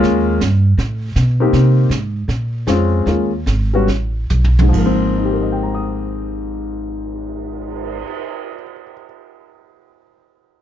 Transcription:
Already playing: grand piano G#3 A#3 C#4 F4
0.03 upright bass D#2, brush sweep, snare
0.40 upright bass G2, snare, hi-hat pedal
0.78 upright bass A2, brush sweep, snare
1.16 upright bass B2, snare, hi-hat pedal
1.40 grand piano A#3 C4 D#4 G4
1.53 upright bass C3, brush sweep, snare
1.89 upright bass G#2, snare, hi-hat pedal
2.28 upright bass A#2, brush sweep, snare
2.67 upright bass F2, grand piano G#3 C4 C#4 F4, snare, hi-hat pedal
3.06 upright bass D#2, grand piano G#3 A#3 C#4 F4, brush sweep, snare
3.46 upright bass G#1, snare, hi-hat pedal
3.74 grand piano G3 B3 C#4 F#4
3.87 upright bass A1, brush sweep, snare
4.30 upright bass B1, hi-hat pedal, mid tom
4.44 floor tom
4.59 grand piano G#2, mid tom
4.69 grand piano F3
4.73 upright bass G#1, kick, crash
4.77 grand piano A#3
4.86 grand piano C4
5.02 cymbal swell
5.17 grand piano D#4
5.25 grand piano G4
5.33 grand piano A#4
5.42 grand piano D#5
5.52 grand piano G5
5.63 grand piano A#5
5.75 grand piano D#6

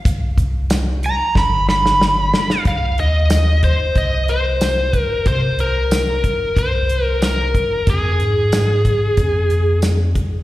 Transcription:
0.05 analog synth bass C2, kick, closed hi-hat
0.37 analog synth bass C2, kick, closed hi-hat
0.70 snare, closed hi-hat, tambourine
1.03 electric slide guitar A#5, closed hi-hat
1.35 analog synth bass G1, electric slide guitar B5, kick, snare
1.69 electric slide guitar B5, snare
1.86 snare
2.01 snare
2.34 snare
2.50 snare
2.65 analog synth bass C2, lead electric guitar F5, kick, closed hi-hat
2.98 analog synth bass D#2, lead electric guitar D#5, closed hi-hat
3.30 snare, closed hi-hat, tambourine
3.63 lead electric guitar C5, kick, closed hi-hat
3.95 analog synth bass C2, lead electric guitar D#5, kick, closed hi-hat
4.28 lead electric guitar C5, closed hi-hat
4.61 snare, closed hi-hat, tambourine
4.93 kick, closed hi-hat
5.00 lead electric guitar A#4
5.25 analog synth bass C3, lead electric guitar C5, kick, closed hi-hat
5.58 analog synth bass C2, lead electric guitar A#4, closed hi-hat
5.91 snare, closed hi-hat, tambourine
6.24 kick, closed hi-hat
6.56 analog synth bass C2, lead electric guitar C5, kick, closed hi-hat
6.89 closed hi-hat
7.05 lead electric guitar A#4
7.22 lead electric guitar A#4, snare, closed hi-hat, tambourine
7.55 kick, closed hi-hat
7.87 analog synth bass F2, lead electric guitar G#4, kick, closed hi-hat
8.19 analog synth bass G#2, closed hi-hat
8.52 snare, closed hi-hat, tambourine
8.85 kick, closed hi-hat
9.17 analog synth bass F2, kick, closed hi-hat
9.50 closed hi-hat
9.82 snare, closed hi-hat, tambourine
10.15 kick, closed hi-hat

